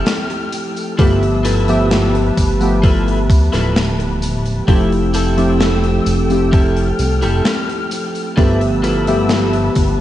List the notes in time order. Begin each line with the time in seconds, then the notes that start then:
Already playing: F3 A3 C4 E4 G4 A4 G5 F6
0.06 snare, closed hi-hat, tambourine
0.30 muted clean electric guitar stroke, closed hi-hat
0.52 closed hi-hat, tambourine
0.76 closed hi-hat, tambourine
0.98 G1 F3 A3 B3 E4 F4 G4 A4 B4 E5 A5 E6, kick, closed hi-hat, tambourine
1.23 closed hi-hat
1.44 E4 F4 A4 B4, closed hi-hat, tambourine
1.68 F3 A3 B3 G4 E5, closed hi-hat, tambourine
1.91 snare, closed hi-hat, tambourine
2.15 closed hi-hat
2.37 G1, kick, closed hi-hat, tambourine
2.60 F3 A3 B3 G4 E5, closed hi-hat, tambourine
2.83 E4 F4 A4 B4, kick, closed hi-hat, tambourine
3.08 closed hi-hat
3.30 D2, kick, closed hi-hat, tambourine
3.52 D1 E4 F4 A4 B4, snare, closed hi-hat, tambourine
3.76 snare, closed hi-hat, tambourine
3.99 muted clean electric guitar stroke, closed hi-hat
4.22 closed hi-hat, tambourine
4.45 closed hi-hat, tambourine
4.67 F1 F3 A3 C4 E4 G4 A4 G5 E6, kick, closed hi-hat, tambourine
4.92 closed hi-hat
5.14 E4 G4 A4, closed hi-hat, tambourine
5.37 F3 A3 C4 E4 G4, closed hi-hat, tambourine
5.60 snare, closed hi-hat, tambourine
5.84 closed hi-hat
6.06 F1, closed hi-hat, tambourine
6.29 F3 A3 C4 E4 G4, closed hi-hat, tambourine
6.52 E4 G4 A4 F6, kick, closed hi-hat, tambourine
6.76 closed hi-hat
6.99 C2, closed hi-hat, tambourine
7.22 F1 E4 G4 A4, closed hi-hat, tambourine
7.45 snare, closed hi-hat, tambourine
7.68 muted clean electric guitar stroke, closed hi-hat
7.91 closed hi-hat, tambourine
8.15 closed hi-hat, tambourine
8.37 G1 F3 A3 B3 E4 F4 G4 A4 B4 E5 A5 E6, kick, closed hi-hat, tambourine
8.61 closed hi-hat
8.83 E4 F4 A4 B4, closed hi-hat, tambourine
9.07 F3 A3 B3 G4 E5, closed hi-hat, tambourine
9.29 snare, closed hi-hat, tambourine
9.53 closed hi-hat
9.75 G1, kick, closed hi-hat, tambourine